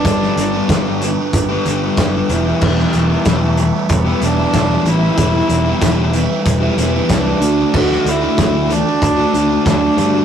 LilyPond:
<<
  \new Staff \with { instrumentName = "Cello" } { \time 4/4 \key e \minor \tempo 4 = 94 d'4. r2 r8 | r4 a4 b8 d'4 e'8~ | e'4. r4. d'4 | fis'8 e'4 d'4. d'4 | }
  \new Staff \with { instrumentName = "Distorted electric guitar" } { \time 4/4 \key e \minor <g b d' g'>8 <g b d' g'>8 <g b d' g'>16 <b d' g'>8. r16 <b d' g'>16 <g b d' g'>8 <g b d' g'>16 <b d' g'>16 <e b e' g'>16 <b e' g'>16 | <e b e' g'>8 <e b e' g'>8 <e b e' g'>16 <b e' g'>8. r16 <b e' g'>16 <e b e' g'>8 <e b e' g'>16 <b e' g'>16 <e b e' g'>16 <b e' g'>16 | <e b e' g'>8 <e b e' g'>8 <e b e' g'>16 <b e' g'>8. r16 <b e' g'>16 <e b e' g'>8 <e b e' g'>16 <b e' g'>16 <d a d' fis'>16 <a d' fis'>16 | <d a d' fis'>8 <d a d' fis'>8 <d a d' fis'>16 <a d' fis'>8. r16 <a d' fis'>16 <d a d' fis'>8 <d a d' fis'>16 <a d' fis'>16 <d a d' fis'>16 <a d' fis'>16 | }
  \new Staff \with { instrumentName = "Overdriven electric guitar" } { \time 4/4 \key e \minor <g, d g b d'>16 <g b d'>8 <g b d'>16 <g, d g b d'>8 <d g b d'>16 <g b d'>8 <g b d'>16 <d g b d'>16 <g b d'>16 <g, d g b d'>8 <e g b e'>16 <g b e'>16 | <e g b e'>16 <g b e'>8 <g b e'>16 <e g b e'>8 <e g b e'>16 <g b e'>8 <g b e'>16 <e g b e'>16 <g b e'>16 <e g b e'>8 <e g b e'>16 <g b e'>16 | <e g b e'>16 <g b e'>8 <g b e'>16 <e g b e'>8 <e g b e'>16 <g b e'>8 <g b e'>16 <e g b e'>16 <g b e'>16 <e g b e'>8 <d a d' fis'>16 <a d' fis'>16 | <d a d' fis'>16 <a d' fis'>8 <a d' fis'>16 <d a d' fis'>8 <d a d' fis'>16 <a d' fis'>8 <a d' fis'>16 <d a d' fis'>16 <a d' fis'>16 <d a d' fis'>8 <d a d' fis'>16 <a d' fis'>16 | }
  \new Staff \with { instrumentName = "Picked electric bass" } { \clef bass \time 4/4 \key e \minor g,,8 g,,8 g,,4 g,,8 g,,8 fis,,8 e,,8 | e,,8 e,,8 e,,4 e,,8 e,,8 e,,8 a,,8 | e,,8 e,,8 e,,4 e,,8 e,,8 c,8 d,8 | d,8 d,8 d,4 d,8 d,8 d,8 g,8 | }
  \new DrumStaff \with { instrumentName = "Drums" } \drummode { \time 4/4 <hh bd>16 sn16 hh8 <hh bd sn>8 hh8 <hh bd>8 hh8 <hh bd sn>8 hh8 | <cymc bd>16 sn16 hh8 <hh bd sn>8 hh8 <hh bd>8 hh8 <hh bd sn>8 hh8 | <hh bd>8 hh8 <hh bd sn>8 hh8 <hh bd>8 hh8 <hh bd sn>8 hh8 | <cymc bd>16 sn16 hh8 <hh bd sn>8 hh8 <hh bd>8 hh8 <hh bd sn>8 hh8 | }
>>